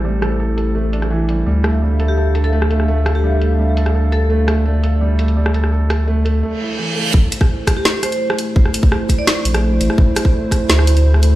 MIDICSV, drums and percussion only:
0, 0, Header, 1, 2, 480
1, 0, Start_track
1, 0, Key_signature, 0, "minor"
1, 0, Tempo, 355030
1, 55, Time_signature, 4, 2, 24, 8
1, 15351, End_track
2, 0, Start_track
2, 0, Title_t, "Drums"
2, 300, Note_on_c, 9, 37, 69
2, 300, Note_on_c, 9, 42, 73
2, 435, Note_off_c, 9, 37, 0
2, 435, Note_off_c, 9, 42, 0
2, 780, Note_on_c, 9, 42, 57
2, 916, Note_off_c, 9, 42, 0
2, 1259, Note_on_c, 9, 42, 72
2, 1383, Note_off_c, 9, 42, 0
2, 1383, Note_on_c, 9, 37, 46
2, 1383, Note_on_c, 9, 42, 34
2, 1518, Note_off_c, 9, 37, 0
2, 1518, Note_off_c, 9, 42, 0
2, 1740, Note_on_c, 9, 42, 59
2, 1875, Note_off_c, 9, 42, 0
2, 2219, Note_on_c, 9, 37, 71
2, 2219, Note_on_c, 9, 42, 67
2, 2354, Note_off_c, 9, 37, 0
2, 2354, Note_off_c, 9, 42, 0
2, 2698, Note_on_c, 9, 42, 56
2, 2834, Note_off_c, 9, 42, 0
2, 3177, Note_on_c, 9, 42, 71
2, 3302, Note_off_c, 9, 42, 0
2, 3302, Note_on_c, 9, 42, 33
2, 3437, Note_off_c, 9, 42, 0
2, 3542, Note_on_c, 9, 37, 67
2, 3658, Note_on_c, 9, 42, 55
2, 3677, Note_off_c, 9, 37, 0
2, 3781, Note_on_c, 9, 37, 48
2, 3793, Note_off_c, 9, 42, 0
2, 3917, Note_off_c, 9, 37, 0
2, 4137, Note_on_c, 9, 37, 72
2, 4137, Note_on_c, 9, 42, 67
2, 4272, Note_off_c, 9, 37, 0
2, 4272, Note_off_c, 9, 42, 0
2, 4617, Note_on_c, 9, 42, 54
2, 4752, Note_off_c, 9, 42, 0
2, 5097, Note_on_c, 9, 42, 71
2, 5220, Note_off_c, 9, 42, 0
2, 5220, Note_on_c, 9, 37, 49
2, 5220, Note_on_c, 9, 42, 33
2, 5356, Note_off_c, 9, 37, 0
2, 5356, Note_off_c, 9, 42, 0
2, 5574, Note_on_c, 9, 42, 55
2, 5710, Note_off_c, 9, 42, 0
2, 6055, Note_on_c, 9, 37, 74
2, 6055, Note_on_c, 9, 42, 72
2, 6190, Note_off_c, 9, 37, 0
2, 6190, Note_off_c, 9, 42, 0
2, 6538, Note_on_c, 9, 42, 58
2, 6673, Note_off_c, 9, 42, 0
2, 7016, Note_on_c, 9, 42, 75
2, 7141, Note_off_c, 9, 42, 0
2, 7141, Note_on_c, 9, 42, 34
2, 7276, Note_off_c, 9, 42, 0
2, 7381, Note_on_c, 9, 37, 75
2, 7495, Note_on_c, 9, 42, 56
2, 7516, Note_off_c, 9, 37, 0
2, 7620, Note_on_c, 9, 37, 51
2, 7630, Note_off_c, 9, 42, 0
2, 7755, Note_off_c, 9, 37, 0
2, 7978, Note_on_c, 9, 37, 74
2, 7978, Note_on_c, 9, 42, 77
2, 8113, Note_off_c, 9, 37, 0
2, 8113, Note_off_c, 9, 42, 0
2, 8458, Note_on_c, 9, 42, 61
2, 8594, Note_off_c, 9, 42, 0
2, 9653, Note_on_c, 9, 36, 117
2, 9788, Note_off_c, 9, 36, 0
2, 9898, Note_on_c, 9, 42, 82
2, 10017, Note_on_c, 9, 36, 108
2, 10022, Note_on_c, 9, 37, 56
2, 10033, Note_off_c, 9, 42, 0
2, 10152, Note_off_c, 9, 36, 0
2, 10157, Note_off_c, 9, 37, 0
2, 10372, Note_on_c, 9, 36, 60
2, 10376, Note_on_c, 9, 37, 79
2, 10376, Note_on_c, 9, 42, 68
2, 10507, Note_off_c, 9, 36, 0
2, 10511, Note_off_c, 9, 37, 0
2, 10511, Note_off_c, 9, 42, 0
2, 10617, Note_on_c, 9, 38, 116
2, 10752, Note_off_c, 9, 38, 0
2, 10856, Note_on_c, 9, 37, 56
2, 10856, Note_on_c, 9, 42, 84
2, 10982, Note_off_c, 9, 42, 0
2, 10982, Note_on_c, 9, 42, 41
2, 10991, Note_off_c, 9, 37, 0
2, 11117, Note_off_c, 9, 42, 0
2, 11221, Note_on_c, 9, 37, 81
2, 11337, Note_on_c, 9, 42, 66
2, 11356, Note_off_c, 9, 37, 0
2, 11472, Note_off_c, 9, 42, 0
2, 11573, Note_on_c, 9, 36, 121
2, 11702, Note_on_c, 9, 37, 52
2, 11708, Note_off_c, 9, 36, 0
2, 11819, Note_on_c, 9, 42, 83
2, 11837, Note_off_c, 9, 37, 0
2, 11937, Note_on_c, 9, 36, 112
2, 11954, Note_off_c, 9, 42, 0
2, 12059, Note_on_c, 9, 37, 81
2, 12072, Note_off_c, 9, 36, 0
2, 12194, Note_off_c, 9, 37, 0
2, 12293, Note_on_c, 9, 36, 62
2, 12298, Note_on_c, 9, 42, 67
2, 12428, Note_off_c, 9, 36, 0
2, 12433, Note_off_c, 9, 42, 0
2, 12539, Note_on_c, 9, 37, 53
2, 12539, Note_on_c, 9, 38, 124
2, 12674, Note_off_c, 9, 37, 0
2, 12674, Note_off_c, 9, 38, 0
2, 12780, Note_on_c, 9, 42, 85
2, 12905, Note_off_c, 9, 42, 0
2, 12905, Note_on_c, 9, 37, 84
2, 12905, Note_on_c, 9, 42, 39
2, 13040, Note_off_c, 9, 37, 0
2, 13040, Note_off_c, 9, 42, 0
2, 13259, Note_on_c, 9, 42, 68
2, 13384, Note_on_c, 9, 37, 56
2, 13395, Note_off_c, 9, 42, 0
2, 13494, Note_on_c, 9, 36, 127
2, 13519, Note_off_c, 9, 37, 0
2, 13629, Note_off_c, 9, 36, 0
2, 13742, Note_on_c, 9, 37, 78
2, 13742, Note_on_c, 9, 42, 83
2, 13858, Note_on_c, 9, 36, 114
2, 13877, Note_off_c, 9, 37, 0
2, 13877, Note_off_c, 9, 42, 0
2, 13993, Note_off_c, 9, 36, 0
2, 14215, Note_on_c, 9, 36, 64
2, 14223, Note_on_c, 9, 37, 50
2, 14223, Note_on_c, 9, 42, 64
2, 14350, Note_off_c, 9, 36, 0
2, 14358, Note_off_c, 9, 37, 0
2, 14358, Note_off_c, 9, 42, 0
2, 14461, Note_on_c, 9, 38, 124
2, 14586, Note_on_c, 9, 37, 79
2, 14596, Note_off_c, 9, 38, 0
2, 14701, Note_on_c, 9, 42, 84
2, 14721, Note_off_c, 9, 37, 0
2, 14828, Note_off_c, 9, 42, 0
2, 14828, Note_on_c, 9, 42, 39
2, 14963, Note_off_c, 9, 42, 0
2, 15065, Note_on_c, 9, 37, 52
2, 15180, Note_on_c, 9, 42, 68
2, 15200, Note_off_c, 9, 37, 0
2, 15315, Note_off_c, 9, 42, 0
2, 15351, End_track
0, 0, End_of_file